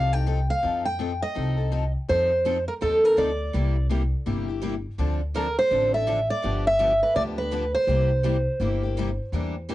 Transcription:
Already playing: C2 F3 C4 D#4 A4 F5
0.13 C4 D#4 A4 G5
0.27 F3 C4 D#4 A4
0.50 F5
0.63 F2 F3 C4 D#4 A4
0.85 G5
0.99 F3 C4 D#4 A4
1.22 D#5
1.35 C2 F3 C4 D#4 A4
1.57 C4 D#4 A4
1.72 F3 C4 D#4 A4
2.08 F2 F3 C4 D#4 A4 C5
2.45 F3 C4 D#4 A4
2.68 A#4
2.82 D#2 F3 C4 D#4 A4
3.04 C4 D#4 A4 A#4
3.18 D2 F3 C4 D#4 A4 D5
3.54 C2 C3 G3 A#3 E4 G4
3.90 C3 G3 A#3 E4 G4
4.26 G1 C3 G3 A#3 E4 G4
4.48 A#3 E4 G4
4.62 C3 G3 A#3 E4 G4
4.99 D2 D3 F3 C4 D4 A4
5.36 D3 F3 C4 D4 A4 A#4
5.59 C5
5.71 A1 D3 F3 C4 D4 A4
5.94 C4 D4 A4 E5
6.07 D3 F3 C4 D4 A4
6.30 D5
6.44 G1 D3 F3 B3 D4 G4
6.67 E5
6.80 D3 F3 B3 D4 G4
7.03 B4
7.16 D2 D3 F3 B3 D4 G4 D5
7.38 B3 D4 G4 B4
7.52 D3 F3 B3 D4 G4
7.75 C5
7.87 C2 C3 G3 A#3 E4 G4
8.24 C3 G3 A#3 E4 G4
8.60 G1 C3 G3 A#3 E4 G4
8.83 A#3 E4 G4
8.98 C3 G3 A#3 E4 G4
9.32 E2 E3 G3 A#3 D4 E4 G4 A#4
9.69 E3 G3 A#3 D4 E4 G4 A#4

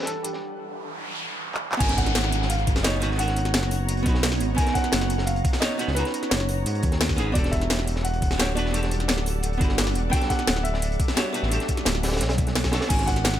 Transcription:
Already playing: E3 G3 B3 D4 F#4 G4 A4 B4 F#5
0.03 A4, snare, closed hi-hat
0.07 closed hi-hat
0.23 G4, closed hi-hat
0.33 snare
0.42 noise sweep
1.55 clap
1.72 clap
1.77 G#1 B3 C#4 D#4 F#4 C#5 G#5 A#5, kick, closed hi-hat, crash, downlifter
1.82 F#4 A#4
1.89 snare, closed hi-hat
1.97 F#5, kick, snare, closed hi-hat
2.06 snare, closed hi-hat
2.15 snare, closed hi-hat
2.24 snare
2.32 closed hi-hat
2.42 snare
2.49 F5, closed hi-hat
2.58 closed hi-hat
2.67 kick, closed hi-hat
2.76 F#1, snare
2.83 B3 C#4 D#4 F#4 C#5 D#5, snare, closed hi-hat
3.00 G#1 B3 C#4 D#4 F#4 B4, closed hi-hat
3.11 snare
3.16 B3 C#4 D#4 F#5, closed hi-hat
3.20 F#4 A#4, closed hi-hat
3.28 snare, closed hi-hat
3.36 closed hi-hat
3.45 snare, closed hi-hat
3.54 F#1, snare, closed hi-hat
3.63 snare
3.71 closed hi-hat, open hi-hat
3.89 closed hi-hat
3.97 closed hi-hat
4.03 B1 B3 C#4 D#4, kick, closed hi-hat
4.07 F#4 B4
4.15 snare
4.23 snare, closed hi-hat, open hi-hat
4.32 snare
4.41 G#1, closed hi-hat
4.55 B3 C#4 D#4 G#5, kick, closed hi-hat
4.60 F#4 A#4
4.67 snare, closed hi-hat
4.74 F#5, kick, snare, closed hi-hat
4.84 snare, closed hi-hat
4.92 F#1, snare, closed hi-hat
5.01 snare
5.10 closed hi-hat
5.18 snare
5.26 F5, closed hi-hat
5.36 closed hi-hat
5.45 kick, closed hi-hat
5.53 snare
5.60 B3 C#4 D#4 F#4 C#5 D#5, snare, closed hi-hat
5.78 B3 C#4 D#4 F#4 B4, closed hi-hat
5.88 C#2, snare
5.93 B3 C#4 D#4 B4, closed hi-hat
5.98 F#4 A#5
6.05 snare, closed hi-hat
6.14 closed hi-hat
6.23 snare, closed hi-hat
6.29 F#1 C#5, snare, closed hi-hat
6.40 snare
6.49 closed hi-hat, open hi-hat
6.66 G#2, closed hi-hat
6.75 closed hi-hat
6.83 D#2, kick, closed hi-hat
6.92 snare, closed hi-hat
7.01 snare, closed hi-hat, open hi-hat
7.09 kick, snare
7.16 G#1 B3 C#4 D#4 G#4, closed hi-hat
7.32 E1 G3 B3 D4 F#4 A4 D5 F#5, kick, closed hi-hat
7.37 G4 A4
7.44 snare, closed hi-hat
7.51 E5, kick, snare, closed hi-hat
7.61 snare, closed hi-hat
7.70 snare, closed hi-hat
7.78 snare
7.87 closed hi-hat
7.96 snare
8.03 F#5, closed hi-hat
8.13 closed hi-hat
8.22 kick, closed hi-hat
8.31 D1, snare
8.38 B3 D4 F#4 G4 C#5, snare, closed hi-hat
8.55 E1 B3 D4 F#4 B4 D5, closed hi-hat
8.66 snare
8.71 B3 D4 F#4, closed hi-hat
8.76 G4 A4
8.83 snare, closed hi-hat
8.91 closed hi-hat
9.00 snare, closed hi-hat
9.08 D1, snare, closed hi-hat
9.18 snare
9.26 closed hi-hat, open hi-hat
9.43 closed hi-hat
9.53 closed hi-hat
9.58 G1 B3 D4 F#4, kick, closed hi-hat
9.62 G4 B4, closed hi-hat
9.69 snare
9.78 snare, closed hi-hat, open hi-hat
9.87 snare
9.95 E1, closed hi-hat
10.10 B3 D4 F#4 G5, kick, closed hi-hat
10.15 G4 A4
10.21 snare, closed hi-hat
10.29 F#5, kick, snare, closed hi-hat
10.39 snare, closed hi-hat
10.47 D1, snare, closed hi-hat
10.56 snare
10.63 E5, closed hi-hat
10.74 snare
10.82 closed hi-hat
10.92 closed hi-hat
11.00 kick, closed hi-hat
11.08 snare
11.15 B3 D4 F#4 G4 C#5, snare, closed hi-hat
11.33 B3 D4 F#4 G4 B4, closed hi-hat
11.43 A1, snare
11.48 B3 D4 F#4, closed hi-hat
11.53 G4 A4
11.60 snare, closed hi-hat
11.68 kick, closed hi-hat
11.77 snare, closed hi-hat
11.85 D1, snare, closed hi-hat
11.95 snare
12.03 snare, closed hi-hat, open hi-hat
12.08 snare, closed hi-hat
12.12 snare, closed hi-hat
12.17 snare, closed hi-hat
12.21 B1, snare, closed hi-hat
12.29 snare, closed hi-hat
12.38 kick, closed hi-hat
12.47 snare, closed hi-hat
12.55 snare, closed hi-hat
12.64 kick, snare, closed hi-hat
12.71 B3 D4 F#4 A4, snare, closed hi-hat
12.81 snare, closed hi-hat
12.87 G#1 B3 C#4 D#4 C#5 G#5 A#5, kick, closed hi-hat, crash
12.92 F#4 A#4
12.99 snare, closed hi-hat
13.06 F#5, kick, snare, closed hi-hat
13.16 snare, closed hi-hat
13.25 snare, closed hi-hat
13.34 snare

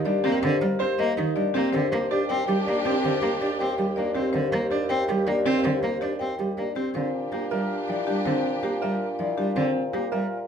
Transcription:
Already playing: D#2 D#4
0.05 G3 D4 D5
0.24 A#3 C4 G4
0.43 D3 C5
0.61 G3 A#4
0.79 C4 G4 C5
0.99 A#3 D#5
1.17 D#3 D#4
1.36 G3 D4 D5
1.54 A#3 C4 G4
1.73 D#2 D3 D4 G4 C5
1.92 A#3 G4 C5
2.10 D4 G4 D5
2.29 C4 G4 G5
2.48 G3 G4
2.66 A#3 D4 G4 D5
2.85 C4 G4
3.03 D3 G4 C5
3.22 A#3 G4 C5
3.41 D4 G4 D5
3.59 C4 G4 G5
3.78 G3 G4
3.96 A#3 D4 G4 D5
4.15 C4 G4
4.33 D3 C5
4.52 A#3 C5
4.71 D4 G4 D5
4.89 C4 G5
5.08 G3 G4
5.27 A#3 D4 D5
5.46 C4 G4
5.64 D3 C5
5.83 A#3 C5
6.01 D4 G4 D5
6.19 C4 G5
6.39 G3 G4
6.57 A#3 D4 D5
6.76 C4 G4
6.94 A#2 D3 C4 D4 G4 C5
7.32 A#3 G4
7.51 G3 A#4 E5
7.89 F3 E4 D5
8.07 G3 D4 G4
8.26 D3 C4 C5
8.63 A#3 G4
8.82 G3 A#4 E5
9.19 F3 E4 D5
9.37 G3 D4 G4
9.56 D3 C4 C5
9.93 A#3 G4
10.12 G3 A#4 E5

